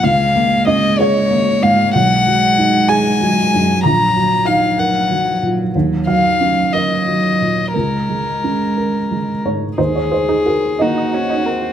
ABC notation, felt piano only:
X:1
M:6/8
L:1/16
Q:3/8=62
K:Bbphr
V:1 name="Felt piano"
f4 e2 d4 f2 | ^f6 ^g6 | b4 f2 g4 z2 | z2 f4 e6 |
B8- B2 d2 | [K:Ebdor] c d c A B2 e6 |]
V:2 name="Felt piano" clef=bass
D,,2 B,2 D2 A2 B,2 A,,2 | =B,,,2 ^F,2 ^D2 ^G2 F,2 ^F,,2 | B,,,2 G,2 E2 B2 G,2 B,,2 | E,,2 G,2 D2 B2 G,2 B,,2 |
D,,2 A,2 D2 B2 A,2 A,,2 | [K:Ebdor] E,,6 [B,B]6 |]